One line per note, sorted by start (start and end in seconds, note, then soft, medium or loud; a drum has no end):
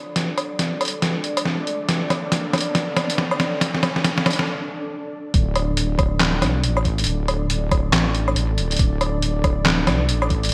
0.00 5.30 D4 medium
0.00 5.30 A4 medium
0.00 5.30 D5 medium
0.00 riser medium
0.16 snare medium
0.16 closed hi-hat medium
0.38 closed hi-hat medium
0.38 low woodblock medium
0.59 snare medium
0.59 closed hi-hat medium
0.81 closed hi-hat medium
0.81 low woodblock medium
0.85 closed hi-hat medium
0.88 closed hi-hat medium
1.02 snare medium
1.02 closed hi-hat medium
1.24 closed hi-hat medium
1.37 closed hi-hat medium
1.37 low woodblock medium
1.45 snare medium
1.67 closed hi-hat medium
1.89 snare medium
1.89 closed hi-hat medium
2.10 snare medium
2.10 closed hi-hat soft
2.10 low woodblock soft
2.32 snare medium
2.32 closed hi-hat medium
2.53 snare medium
2.53 closed hi-hat soft
2.53 low woodblock medium
2.58 closed hi-hat medium
2.61 closed hi-hat medium
2.75 snare medium
2.75 closed hi-hat medium
2.97 snare medium
2.97 closed hi-hat medium
2.97 low woodblock medium
3.10 closed hi-hat medium
3.18 snare medium
3.31 low woodblock medium
3.40 snare medium
3.40 closed hi-hat soft
3.61 snare medium
3.61 closed hi-hat medium
3.75 snare medium
3.83 snare medium
3.83 closed hi-hat soft
3.83 low woodblock medium
3.96 snare medium
4.05 snare loud
4.05 closed hi-hat medium
4.18 snare medium
4.26 snare loud
4.26 closed hi-hat soft
4.26 low woodblock medium
4.30 closed hi-hat medium
4.33 closed hi-hat medium
4.39 snare medium
5.34 6.43 D1 loud
5.34 10.54 D4 medium
5.34 10.54 A4 medium
5.34 10.54 D5 medium
5.34 kick loud
5.34 closed hi-hat medium
5.56 closed hi-hat medium
5.56 low woodblock medium
5.77 closed hi-hat medium
5.99 kick loud
5.99 closed hi-hat soft
5.99 low woodblock medium
6.20 snare loud
6.20 clap medium
6.20 closed hi-hat medium
6.42 6.65 C2 medium
6.42 snare medium
6.42 closed hi-hat medium
6.42 low woodblock medium
6.63 7.06 A1 medium
6.63 closed hi-hat medium
6.77 low woodblock medium
6.85 kick medium
6.85 closed hi-hat medium
6.98 closed hi-hat soft
6.98 closed hi-hat medium
7.04 closed hi-hat medium
7.07 7.92 D1 loud
7.07 closed hi-hat medium
7.28 closed hi-hat medium
7.28 low woodblock medium
7.50 closed hi-hat medium
7.71 kick loud
7.71 closed hi-hat soft
7.71 low woodblock medium
7.93 8.35 A1 loud
7.93 snare loud
7.93 clap loud
7.93 closed hi-hat medium
8.15 closed hi-hat medium
8.28 low woodblock medium
8.36 8.59 A1 loud
8.36 closed hi-hat medium
8.58 8.78 D1 medium
8.58 closed hi-hat medium
8.71 closed hi-hat soft
8.71 closed hi-hat medium
8.77 9.89 D1 loud
8.77 closed hi-hat medium
8.79 kick loud
8.79 closed hi-hat medium
9.01 closed hi-hat medium
9.01 low woodblock medium
9.22 closed hi-hat medium
9.44 kick loud
9.44 closed hi-hat soft
9.44 low woodblock medium
9.66 snare loud
9.66 clap medium
9.66 closed hi-hat medium
9.87 10.10 C2 loud
9.87 snare medium
9.87 closed hi-hat medium
9.87 low woodblock medium
10.09 10.51 A1 medium
10.09 closed hi-hat medium
10.22 low woodblock medium
10.30 kick medium
10.30 closed hi-hat medium
10.43 closed hi-hat soft
10.43 closed hi-hat medium
10.49 closed hi-hat medium